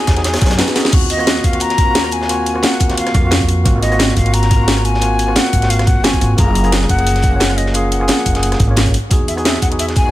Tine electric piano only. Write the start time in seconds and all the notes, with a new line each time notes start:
Already playing: B3 D#4 F#4 G#4 C#5
0.15 B3 D#4 F#4 G#4
0.57 B3 D#4 F#4 B4
0.74 B3 D#4 F#4 G#4
0.91 A#3 C4 F4 F#4
1.17 A#3 C4 F4 F#4
1.52 A#3 C4 F4 F#4
1.84 A#3 C4
1.88 F4 F#4
2.27 A#3 C4 F4 F#4
2.54 A#3 C4 F4 F#4
2.88 A#3 C4 F4 F#4
3.20 A#3 C4
3.25 F4 F#4
3.64 A#3 C4 F4 F#4
3.90 A#3 C4 F4 F#4
4.24 A#3 C4 F4 F#4
4.56 A#3 C4
4.61 F4 F#4
5.00 A#3 C4 F4 F#4
5.26 A#3 C4 F4 F#4
5.61 A#3 C4 F4 F#4
6.03 A#3 C4 F4 F#4
6.20 A#3 C4 F4 F#4
6.37 A#3 C#4 F4 G#4
6.63 A#3 C#4 F4 G#4
6.97 F3 A#3 C#4 G#4
7.29 A#3 C#4
7.34 F4 C#5
7.73 A#3 C#4 F4 G#4
7.99 A#3 C#4 F4 G#4
8.33 A#3 C#4 F4 G#4
8.67 A#3 C#4 F4 C#5
9.10 B3 D#4 F#4 G#4
9.36 B3 D#4 F#4 G#4
9.70 B3 D#4 F#4 G#4
10.02 B3 D#4
10.07 F#4